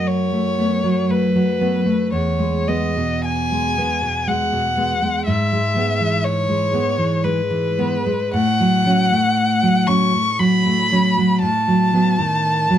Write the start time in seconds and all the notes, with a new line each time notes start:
Already playing: F#2 F#3
0.07 C#5
0.32 A3
0.58 A3 B3
0.84 F#3
1.09 A3 B4
1.36 F#3
1.61 A3 B3
1.86 A3
2.12 E2 C#5
2.39 G#3
2.68 G#3 B3 D#5
2.97 B2
3.25 G#5
3.52 G#3
3.77 G#3 B3
4.02 B2
4.27 G#3 F#5
4.53 B2
4.77 G#3 B3
5.02 G#3
5.27 G#2 E5
5.53 G#3
5.76 G#3 B3
6.00 E3
6.24 C#5
6.49 G#3
6.73 G#3 B3
6.98 E3
7.24 G#3 B4
7.51 E3
7.78 G#3 B3
8.06 G#3
8.34 A2 F#5
8.60 F#3
8.86 F#3 C#4
9.12 A3
9.63 F#3
9.87 F#3 C#4 C#6
10.14 A3
10.39 F#3 B5
10.65 A3
10.92 F#3 C#4
11.18 F#3
11.42 A2 A5
11.68 F#3
11.93 F#3 B3
12.19 D#3
12.70 F#3